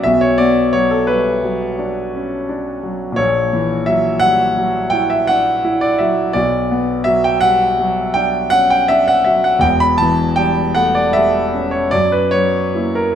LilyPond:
<<
  \new Staff \with { instrumentName = "Grand piano" } { \time 9/8 \key b \minor \tempo 4. = 56 e''16 cis''16 d''8 cis''16 a'16 b'4. r4. | cis''4 e''8 fis''4 g''16 e''16 fis''8. d''16 e''8 | d''4 e''16 g''16 fis''4 g''8 fis''16 g''16 e''16 fis''16 e''16 fis''16 | g''16 b''16 a''8 g''8 fis''16 d''16 e''8. cis''16 d''16 b'16 cis''8. ais'16 | }
  \new Staff \with { instrumentName = "Grand piano" } { \clef bass \time 9/8 \key b \minor <b,, b,>8 b8 fis8 g8 fis8 d'8 cis'8 d'8 fis8 | <ais,, ais,>8 e8 fis8 g8 fis8 e'8 d'8 e'8 fis8 | <b,, b,>8 b8 fis8 g8 fis8 d'8 cis'8 d'8 fis8 | <e,, e,>8 e8 g8 a8 g8 cis'8 fis,8 fis8 <ais e'>8 | }
>>